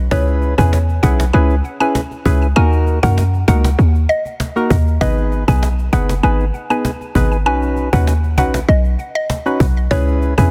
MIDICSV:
0, 0, Header, 1, 5, 480
1, 0, Start_track
1, 0, Key_signature, 5, "minor"
1, 0, Tempo, 612245
1, 89, Time_signature, 4, 2, 24, 8
1, 8237, End_track
2, 0, Start_track
2, 0, Title_t, "Synth pluck"
2, 0, Program_c, 0, 84
2, 88, Note_on_c, 0, 73, 100
2, 200, Note_off_c, 0, 73, 0
2, 454, Note_on_c, 0, 80, 79
2, 554, Note_off_c, 0, 80, 0
2, 806, Note_on_c, 0, 78, 71
2, 918, Note_off_c, 0, 78, 0
2, 1046, Note_on_c, 0, 80, 83
2, 1158, Note_off_c, 0, 80, 0
2, 1414, Note_on_c, 0, 80, 87
2, 1514, Note_off_c, 0, 80, 0
2, 2007, Note_on_c, 0, 80, 108
2, 2119, Note_off_c, 0, 80, 0
2, 2375, Note_on_c, 0, 78, 80
2, 2474, Note_off_c, 0, 78, 0
2, 2727, Note_on_c, 0, 78, 87
2, 2839, Note_off_c, 0, 78, 0
2, 3208, Note_on_c, 0, 75, 86
2, 3320, Note_off_c, 0, 75, 0
2, 3928, Note_on_c, 0, 75, 103
2, 4040, Note_off_c, 0, 75, 0
2, 4296, Note_on_c, 0, 80, 77
2, 4395, Note_off_c, 0, 80, 0
2, 4647, Note_on_c, 0, 78, 78
2, 4759, Note_off_c, 0, 78, 0
2, 4887, Note_on_c, 0, 80, 93
2, 4999, Note_off_c, 0, 80, 0
2, 5255, Note_on_c, 0, 80, 87
2, 5354, Note_off_c, 0, 80, 0
2, 5850, Note_on_c, 0, 80, 110
2, 5960, Note_off_c, 0, 80, 0
2, 6216, Note_on_c, 0, 78, 77
2, 6314, Note_off_c, 0, 78, 0
2, 6568, Note_on_c, 0, 78, 82
2, 6679, Note_off_c, 0, 78, 0
2, 6809, Note_on_c, 0, 75, 84
2, 6920, Note_off_c, 0, 75, 0
2, 7176, Note_on_c, 0, 75, 88
2, 7275, Note_off_c, 0, 75, 0
2, 7768, Note_on_c, 0, 73, 104
2, 7879, Note_off_c, 0, 73, 0
2, 8135, Note_on_c, 0, 80, 78
2, 8234, Note_off_c, 0, 80, 0
2, 8237, End_track
3, 0, Start_track
3, 0, Title_t, "Synth stab"
3, 0, Program_c, 1, 62
3, 87, Note_on_c, 1, 61, 98
3, 88, Note_on_c, 1, 64, 93
3, 90, Note_on_c, 1, 68, 90
3, 92, Note_on_c, 1, 71, 108
3, 425, Note_off_c, 1, 61, 0
3, 425, Note_off_c, 1, 64, 0
3, 426, Note_off_c, 1, 68, 0
3, 427, Note_off_c, 1, 71, 0
3, 453, Note_on_c, 1, 61, 75
3, 455, Note_on_c, 1, 64, 69
3, 456, Note_on_c, 1, 68, 74
3, 457, Note_on_c, 1, 71, 86
3, 613, Note_off_c, 1, 61, 0
3, 614, Note_off_c, 1, 64, 0
3, 615, Note_off_c, 1, 68, 0
3, 616, Note_off_c, 1, 71, 0
3, 806, Note_on_c, 1, 61, 76
3, 808, Note_on_c, 1, 64, 73
3, 810, Note_on_c, 1, 68, 73
3, 811, Note_on_c, 1, 71, 84
3, 976, Note_off_c, 1, 61, 0
3, 976, Note_off_c, 1, 64, 0
3, 977, Note_off_c, 1, 68, 0
3, 978, Note_off_c, 1, 71, 0
3, 1047, Note_on_c, 1, 61, 94
3, 1048, Note_on_c, 1, 64, 88
3, 1050, Note_on_c, 1, 68, 87
3, 1052, Note_on_c, 1, 71, 106
3, 1216, Note_off_c, 1, 61, 0
3, 1217, Note_off_c, 1, 64, 0
3, 1218, Note_off_c, 1, 68, 0
3, 1218, Note_off_c, 1, 71, 0
3, 1414, Note_on_c, 1, 61, 82
3, 1416, Note_on_c, 1, 64, 74
3, 1417, Note_on_c, 1, 68, 77
3, 1419, Note_on_c, 1, 71, 89
3, 1574, Note_off_c, 1, 61, 0
3, 1575, Note_off_c, 1, 64, 0
3, 1576, Note_off_c, 1, 68, 0
3, 1576, Note_off_c, 1, 71, 0
3, 1766, Note_on_c, 1, 61, 81
3, 1768, Note_on_c, 1, 64, 71
3, 1770, Note_on_c, 1, 68, 73
3, 1771, Note_on_c, 1, 71, 86
3, 1935, Note_off_c, 1, 61, 0
3, 1936, Note_off_c, 1, 64, 0
3, 1937, Note_off_c, 1, 68, 0
3, 1938, Note_off_c, 1, 71, 0
3, 2005, Note_on_c, 1, 58, 98
3, 2007, Note_on_c, 1, 63, 92
3, 2009, Note_on_c, 1, 66, 92
3, 2010, Note_on_c, 1, 70, 106
3, 2344, Note_off_c, 1, 58, 0
3, 2345, Note_off_c, 1, 63, 0
3, 2346, Note_off_c, 1, 66, 0
3, 2346, Note_off_c, 1, 70, 0
3, 2373, Note_on_c, 1, 58, 77
3, 2374, Note_on_c, 1, 63, 71
3, 2376, Note_on_c, 1, 66, 74
3, 2378, Note_on_c, 1, 70, 85
3, 2533, Note_off_c, 1, 58, 0
3, 2534, Note_off_c, 1, 63, 0
3, 2535, Note_off_c, 1, 66, 0
3, 2536, Note_off_c, 1, 70, 0
3, 2726, Note_on_c, 1, 58, 77
3, 2727, Note_on_c, 1, 63, 71
3, 2729, Note_on_c, 1, 66, 69
3, 2730, Note_on_c, 1, 70, 84
3, 2895, Note_off_c, 1, 58, 0
3, 2896, Note_off_c, 1, 63, 0
3, 2897, Note_off_c, 1, 66, 0
3, 2898, Note_off_c, 1, 70, 0
3, 3573, Note_on_c, 1, 58, 81
3, 3575, Note_on_c, 1, 63, 69
3, 3576, Note_on_c, 1, 66, 69
3, 3578, Note_on_c, 1, 70, 85
3, 3733, Note_off_c, 1, 58, 0
3, 3734, Note_off_c, 1, 63, 0
3, 3735, Note_off_c, 1, 66, 0
3, 3736, Note_off_c, 1, 70, 0
3, 3926, Note_on_c, 1, 59, 100
3, 3927, Note_on_c, 1, 63, 89
3, 3929, Note_on_c, 1, 68, 93
3, 3931, Note_on_c, 1, 71, 106
3, 4264, Note_off_c, 1, 59, 0
3, 4265, Note_off_c, 1, 63, 0
3, 4266, Note_off_c, 1, 68, 0
3, 4266, Note_off_c, 1, 71, 0
3, 4293, Note_on_c, 1, 59, 73
3, 4295, Note_on_c, 1, 63, 69
3, 4296, Note_on_c, 1, 68, 73
3, 4298, Note_on_c, 1, 71, 83
3, 4454, Note_off_c, 1, 59, 0
3, 4455, Note_off_c, 1, 63, 0
3, 4455, Note_off_c, 1, 68, 0
3, 4456, Note_off_c, 1, 71, 0
3, 4646, Note_on_c, 1, 59, 78
3, 4647, Note_on_c, 1, 63, 71
3, 4649, Note_on_c, 1, 68, 71
3, 4651, Note_on_c, 1, 71, 84
3, 4816, Note_off_c, 1, 59, 0
3, 4816, Note_off_c, 1, 63, 0
3, 4817, Note_off_c, 1, 68, 0
3, 4818, Note_off_c, 1, 71, 0
3, 4886, Note_on_c, 1, 59, 98
3, 4888, Note_on_c, 1, 63, 89
3, 4890, Note_on_c, 1, 68, 87
3, 4891, Note_on_c, 1, 71, 102
3, 5056, Note_off_c, 1, 59, 0
3, 5056, Note_off_c, 1, 63, 0
3, 5058, Note_off_c, 1, 68, 0
3, 5058, Note_off_c, 1, 71, 0
3, 5254, Note_on_c, 1, 59, 82
3, 5255, Note_on_c, 1, 63, 76
3, 5257, Note_on_c, 1, 68, 70
3, 5258, Note_on_c, 1, 71, 88
3, 5414, Note_off_c, 1, 59, 0
3, 5415, Note_off_c, 1, 63, 0
3, 5415, Note_off_c, 1, 68, 0
3, 5416, Note_off_c, 1, 71, 0
3, 5607, Note_on_c, 1, 59, 80
3, 5609, Note_on_c, 1, 63, 76
3, 5611, Note_on_c, 1, 68, 73
3, 5612, Note_on_c, 1, 71, 85
3, 5776, Note_off_c, 1, 59, 0
3, 5777, Note_off_c, 1, 63, 0
3, 5778, Note_off_c, 1, 68, 0
3, 5779, Note_off_c, 1, 71, 0
3, 5847, Note_on_c, 1, 61, 96
3, 5848, Note_on_c, 1, 63, 92
3, 5849, Note_on_c, 1, 66, 90
3, 5851, Note_on_c, 1, 71, 107
3, 6184, Note_off_c, 1, 61, 0
3, 6185, Note_off_c, 1, 63, 0
3, 6186, Note_off_c, 1, 66, 0
3, 6187, Note_off_c, 1, 71, 0
3, 6215, Note_on_c, 1, 61, 75
3, 6217, Note_on_c, 1, 63, 73
3, 6218, Note_on_c, 1, 66, 72
3, 6220, Note_on_c, 1, 71, 86
3, 6374, Note_off_c, 1, 61, 0
3, 6375, Note_off_c, 1, 63, 0
3, 6376, Note_off_c, 1, 66, 0
3, 6377, Note_off_c, 1, 71, 0
3, 6568, Note_on_c, 1, 61, 77
3, 6569, Note_on_c, 1, 63, 71
3, 6571, Note_on_c, 1, 66, 73
3, 6572, Note_on_c, 1, 71, 85
3, 6737, Note_off_c, 1, 61, 0
3, 6737, Note_off_c, 1, 63, 0
3, 6738, Note_off_c, 1, 66, 0
3, 6739, Note_off_c, 1, 71, 0
3, 7414, Note_on_c, 1, 61, 77
3, 7416, Note_on_c, 1, 63, 71
3, 7417, Note_on_c, 1, 66, 72
3, 7419, Note_on_c, 1, 71, 87
3, 7574, Note_off_c, 1, 61, 0
3, 7575, Note_off_c, 1, 63, 0
3, 7575, Note_off_c, 1, 66, 0
3, 7576, Note_off_c, 1, 71, 0
3, 7767, Note_on_c, 1, 61, 103
3, 7769, Note_on_c, 1, 64, 86
3, 7770, Note_on_c, 1, 68, 92
3, 7772, Note_on_c, 1, 71, 110
3, 8105, Note_off_c, 1, 61, 0
3, 8106, Note_off_c, 1, 64, 0
3, 8106, Note_off_c, 1, 68, 0
3, 8107, Note_off_c, 1, 71, 0
3, 8135, Note_on_c, 1, 61, 78
3, 8136, Note_on_c, 1, 64, 69
3, 8138, Note_on_c, 1, 68, 70
3, 8140, Note_on_c, 1, 71, 83
3, 8237, Note_off_c, 1, 61, 0
3, 8237, Note_off_c, 1, 64, 0
3, 8237, Note_off_c, 1, 68, 0
3, 8237, Note_off_c, 1, 71, 0
3, 8237, End_track
4, 0, Start_track
4, 0, Title_t, "808-style bass"
4, 0, Program_c, 2, 38
4, 89, Note_on_c, 2, 37, 109
4, 425, Note_off_c, 2, 37, 0
4, 457, Note_on_c, 2, 40, 90
4, 778, Note_off_c, 2, 40, 0
4, 809, Note_on_c, 2, 35, 97
4, 1027, Note_off_c, 2, 35, 0
4, 1049, Note_on_c, 2, 37, 107
4, 1268, Note_off_c, 2, 37, 0
4, 1768, Note_on_c, 2, 37, 88
4, 1987, Note_off_c, 2, 37, 0
4, 2009, Note_on_c, 2, 39, 97
4, 2345, Note_off_c, 2, 39, 0
4, 2377, Note_on_c, 2, 42, 94
4, 2698, Note_off_c, 2, 42, 0
4, 2727, Note_on_c, 2, 37, 95
4, 2947, Note_off_c, 2, 37, 0
4, 2968, Note_on_c, 2, 39, 109
4, 3187, Note_off_c, 2, 39, 0
4, 3688, Note_on_c, 2, 39, 89
4, 3907, Note_off_c, 2, 39, 0
4, 3929, Note_on_c, 2, 32, 111
4, 4265, Note_off_c, 2, 32, 0
4, 4297, Note_on_c, 2, 35, 89
4, 4618, Note_off_c, 2, 35, 0
4, 4648, Note_on_c, 2, 30, 97
4, 4867, Note_off_c, 2, 30, 0
4, 4887, Note_on_c, 2, 32, 102
4, 5106, Note_off_c, 2, 32, 0
4, 5608, Note_on_c, 2, 32, 86
4, 5848, Note_on_c, 2, 35, 100
4, 5860, Note_off_c, 2, 32, 0
4, 6184, Note_off_c, 2, 35, 0
4, 6216, Note_on_c, 2, 39, 93
4, 6567, Note_on_c, 2, 34, 93
4, 6579, Note_off_c, 2, 39, 0
4, 6787, Note_off_c, 2, 34, 0
4, 6809, Note_on_c, 2, 35, 102
4, 7028, Note_off_c, 2, 35, 0
4, 7528, Note_on_c, 2, 35, 94
4, 7747, Note_off_c, 2, 35, 0
4, 7768, Note_on_c, 2, 37, 109
4, 8104, Note_off_c, 2, 37, 0
4, 8137, Note_on_c, 2, 40, 91
4, 8237, Note_off_c, 2, 40, 0
4, 8237, End_track
5, 0, Start_track
5, 0, Title_t, "Cajon"
5, 89, Note_on_c, 9, 36, 110
5, 167, Note_off_c, 9, 36, 0
5, 214, Note_on_c, 9, 38, 31
5, 293, Note_off_c, 9, 38, 0
5, 327, Note_on_c, 9, 38, 41
5, 406, Note_off_c, 9, 38, 0
5, 457, Note_on_c, 9, 36, 90
5, 536, Note_off_c, 9, 36, 0
5, 571, Note_on_c, 9, 38, 98
5, 650, Note_off_c, 9, 38, 0
5, 696, Note_on_c, 9, 38, 31
5, 775, Note_off_c, 9, 38, 0
5, 808, Note_on_c, 9, 36, 81
5, 811, Note_on_c, 9, 38, 94
5, 887, Note_off_c, 9, 36, 0
5, 889, Note_off_c, 9, 38, 0
5, 938, Note_on_c, 9, 38, 98
5, 1017, Note_off_c, 9, 38, 0
5, 1048, Note_on_c, 9, 38, 46
5, 1126, Note_off_c, 9, 38, 0
5, 1175, Note_on_c, 9, 38, 29
5, 1253, Note_off_c, 9, 38, 0
5, 1287, Note_on_c, 9, 38, 41
5, 1366, Note_off_c, 9, 38, 0
5, 1415, Note_on_c, 9, 38, 43
5, 1493, Note_off_c, 9, 38, 0
5, 1529, Note_on_c, 9, 38, 98
5, 1608, Note_off_c, 9, 38, 0
5, 1655, Note_on_c, 9, 38, 33
5, 1734, Note_off_c, 9, 38, 0
5, 1768, Note_on_c, 9, 36, 93
5, 1846, Note_off_c, 9, 36, 0
5, 1897, Note_on_c, 9, 38, 36
5, 1976, Note_off_c, 9, 38, 0
5, 2009, Note_on_c, 9, 38, 41
5, 2087, Note_off_c, 9, 38, 0
5, 2134, Note_on_c, 9, 38, 32
5, 2213, Note_off_c, 9, 38, 0
5, 2247, Note_on_c, 9, 38, 41
5, 2326, Note_off_c, 9, 38, 0
5, 2377, Note_on_c, 9, 36, 92
5, 2455, Note_off_c, 9, 36, 0
5, 2491, Note_on_c, 9, 38, 100
5, 2569, Note_off_c, 9, 38, 0
5, 2615, Note_on_c, 9, 38, 31
5, 2694, Note_off_c, 9, 38, 0
5, 2728, Note_on_c, 9, 36, 75
5, 2730, Note_on_c, 9, 38, 100
5, 2806, Note_off_c, 9, 36, 0
5, 2809, Note_off_c, 9, 38, 0
5, 2857, Note_on_c, 9, 38, 101
5, 2936, Note_off_c, 9, 38, 0
5, 2968, Note_on_c, 9, 38, 47
5, 3046, Note_off_c, 9, 38, 0
5, 3094, Note_on_c, 9, 38, 28
5, 3173, Note_off_c, 9, 38, 0
5, 3207, Note_on_c, 9, 38, 40
5, 3285, Note_off_c, 9, 38, 0
5, 3335, Note_on_c, 9, 38, 43
5, 3413, Note_off_c, 9, 38, 0
5, 3449, Note_on_c, 9, 38, 94
5, 3527, Note_off_c, 9, 38, 0
5, 3575, Note_on_c, 9, 38, 36
5, 3654, Note_off_c, 9, 38, 0
5, 3688, Note_on_c, 9, 36, 92
5, 3767, Note_off_c, 9, 36, 0
5, 3818, Note_on_c, 9, 38, 36
5, 3896, Note_off_c, 9, 38, 0
5, 3929, Note_on_c, 9, 36, 112
5, 4007, Note_off_c, 9, 36, 0
5, 4055, Note_on_c, 9, 38, 31
5, 4134, Note_off_c, 9, 38, 0
5, 4168, Note_on_c, 9, 38, 42
5, 4247, Note_off_c, 9, 38, 0
5, 4297, Note_on_c, 9, 36, 90
5, 4375, Note_off_c, 9, 36, 0
5, 4412, Note_on_c, 9, 38, 101
5, 4490, Note_off_c, 9, 38, 0
5, 4535, Note_on_c, 9, 38, 31
5, 4613, Note_off_c, 9, 38, 0
5, 4648, Note_on_c, 9, 36, 77
5, 4650, Note_on_c, 9, 38, 94
5, 4726, Note_off_c, 9, 36, 0
5, 4729, Note_off_c, 9, 38, 0
5, 4778, Note_on_c, 9, 38, 97
5, 4856, Note_off_c, 9, 38, 0
5, 4888, Note_on_c, 9, 38, 45
5, 4967, Note_off_c, 9, 38, 0
5, 5014, Note_on_c, 9, 38, 30
5, 5092, Note_off_c, 9, 38, 0
5, 5127, Note_on_c, 9, 38, 41
5, 5205, Note_off_c, 9, 38, 0
5, 5254, Note_on_c, 9, 38, 44
5, 5333, Note_off_c, 9, 38, 0
5, 5369, Note_on_c, 9, 38, 98
5, 5447, Note_off_c, 9, 38, 0
5, 5495, Note_on_c, 9, 38, 34
5, 5573, Note_off_c, 9, 38, 0
5, 5608, Note_on_c, 9, 36, 96
5, 5686, Note_off_c, 9, 36, 0
5, 5736, Note_on_c, 9, 38, 37
5, 5815, Note_off_c, 9, 38, 0
5, 5848, Note_on_c, 9, 38, 41
5, 5927, Note_off_c, 9, 38, 0
5, 5974, Note_on_c, 9, 38, 31
5, 6052, Note_off_c, 9, 38, 0
5, 6086, Note_on_c, 9, 38, 44
5, 6165, Note_off_c, 9, 38, 0
5, 6216, Note_on_c, 9, 36, 86
5, 6295, Note_off_c, 9, 36, 0
5, 6330, Note_on_c, 9, 38, 93
5, 6408, Note_off_c, 9, 38, 0
5, 6455, Note_on_c, 9, 38, 32
5, 6533, Note_off_c, 9, 38, 0
5, 6567, Note_on_c, 9, 36, 76
5, 6569, Note_on_c, 9, 38, 96
5, 6646, Note_off_c, 9, 36, 0
5, 6648, Note_off_c, 9, 38, 0
5, 6696, Note_on_c, 9, 38, 103
5, 6775, Note_off_c, 9, 38, 0
5, 6807, Note_on_c, 9, 38, 47
5, 6885, Note_off_c, 9, 38, 0
5, 6933, Note_on_c, 9, 38, 28
5, 7011, Note_off_c, 9, 38, 0
5, 7046, Note_on_c, 9, 38, 41
5, 7124, Note_off_c, 9, 38, 0
5, 7288, Note_on_c, 9, 38, 101
5, 7367, Note_off_c, 9, 38, 0
5, 7415, Note_on_c, 9, 38, 35
5, 7493, Note_off_c, 9, 38, 0
5, 7528, Note_on_c, 9, 36, 98
5, 7606, Note_off_c, 9, 36, 0
5, 7658, Note_on_c, 9, 38, 37
5, 7736, Note_off_c, 9, 38, 0
5, 7768, Note_on_c, 9, 36, 116
5, 7847, Note_off_c, 9, 36, 0
5, 7895, Note_on_c, 9, 38, 32
5, 7973, Note_off_c, 9, 38, 0
5, 8009, Note_on_c, 9, 38, 42
5, 8087, Note_off_c, 9, 38, 0
5, 8137, Note_on_c, 9, 36, 94
5, 8216, Note_off_c, 9, 36, 0
5, 8237, End_track
0, 0, End_of_file